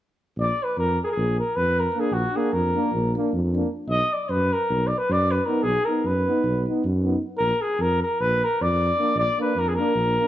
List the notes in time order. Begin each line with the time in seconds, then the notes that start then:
0.37 A#1 D5
0.63 B4
0.77 F2 A#4
1.04 G#4 A#4
1.11 G#4
1.17 A#1
1.39 A#4
1.56 F2 B4
1.80 A#4
1.95 A#3 D4
2.00 G#4
2.12 A#1 F#4
2.34 A#3 D4 G#4
2.53 F2 A#4
2.75 A#3 D4
2.93 A#1
3.17 A#3 D4
3.33 F2
3.55 A#3 D4
3.88 B1 D#5
4.13 D5
4.29 F#2 B4
4.53 A#4
4.70 B1
4.87 D5
4.98 B4
5.09 F#2 D5
5.31 B4
5.45 B3 D#4 A#4
5.63 B1 G#4
5.85 B3 D#4 A#4
6.04 F#2 B4
6.27 B3 D#4
6.43 B1
6.67 B3 D#4
6.84 F#2
7.04 B3 D#4
7.38 A#1 A#4
7.62 G#4
7.79 F2 A#4
8.02 A#4
8.21 A#1 B4
8.44 A#4
8.61 F2 D5
8.98 A#3 D4
9.15 A#1 D5
9.38 A#3 D4 B4
9.55 F2 A#4
9.68 G#4
9.75 A#3 D4 A#4
9.95 A#1
10.19 A#3 D4